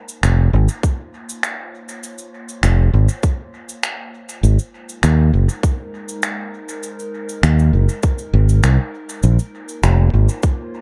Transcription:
Already playing: A#3 D#4 F4 A#4 C5
0.09 cabasa
0.23 F1, finger snap, cabasa
0.53 G#1
0.67 C#5, cabasa
0.83 kick, cabasa
1.29 cabasa
1.43 finger snap, cabasa
1.89 cabasa
2.03 cabasa
2.18 cabasa
2.49 cabasa
2.63 F1, finger snap, cabasa
2.93 G#1
3.09 cabasa
3.23 kick, cabasa
3.69 cabasa
3.83 finger snap, cabasa
4.29 cabasa
4.43 G#1 G#3, cabasa
4.58 D#4 A#4, cabasa
4.89 cabasa
5.03 D#2, finger snap, cabasa
5.33 F#1
5.49 cabasa
5.63 kick, cabasa
6.09 cabasa
6.23 finger snap, cabasa
6.69 cabasa
6.83 cabasa
6.99 cabasa
7.29 cabasa
7.43 D#2, finger snap, cabasa
7.59 cabasa
7.73 F#1
7.89 cabasa
8.03 kick, cabasa
8.18 cabasa
8.33 G#1
8.49 cabasa
8.63 C2, finger snap, cabasa
9.09 cabasa
9.23 A#1 A#3, cabasa
9.32 F4
9.39 cabasa
9.48 C5
9.69 cabasa
9.83 F1, finger snap, cabasa
10.08 C#5
10.14 G#1
10.29 cabasa
10.43 kick, cabasa

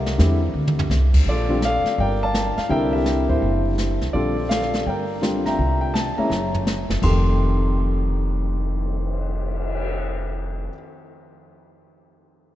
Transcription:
Already playing: C2 G4 A#4 E5
0.06 snare
0.18 E2 D3 G3 C4 E4, kick, snare, hi-hat pedal
0.54 D2
0.68 mid tom
0.79 floor tom
0.90 C2, snare, hi-hat pedal
1.14 kick, crash
1.26 A#1 F4 A4 D5, brush sweep, kick
1.49 D3 G3 C4 F4
1.62 A4 D5 F5, snare, hi-hat pedal
1.84 muted upright bass stroke, snare
1.98 G1 A#4 D5 G5, brush sweep, kick
2.23 D5 F5 A5
2.34 snare, hi-hat pedal
2.57 F5, muted upright bass stroke, snare
2.69 C2 D3 G3 C4 E4 A#4 E5 G5, brush sweep, kick
2.93 G4 A#4 E5
3.06 snare, hi-hat pedal
3.29 G1 E4 C5, kick
3.42 F#1, brush sweep, kick
3.78 snare, hi-hat pedal
4.01 B1, snare
4.13 A#1 D3 G3 C4 F4 A4 D5, brush sweep, kick
4.49 A4 D5 F5, snare, hi-hat pedal
4.63 snare
4.74 snare
4.86 G1 A#4 D5 G5, brush sweep, kick
5.22 D3 G3 C4 F4, snare, hi-hat pedal
5.46 E5 G5 A#5, snare
5.58 C2, brush sweep, kick
5.81 G5
5.94 A5, snare, hi-hat pedal
6.18 G#3 A#3 C#4 E4 C#5 E5 A#5, muted upright bass stroke
6.30 F#1, snare
6.54 floor tom
6.67 snare, hi-hat pedal
6.89 F#1, snare
7.02 F1 F2 D#3 A3 G4 C6, kick, crash
7.26 cymbal swell

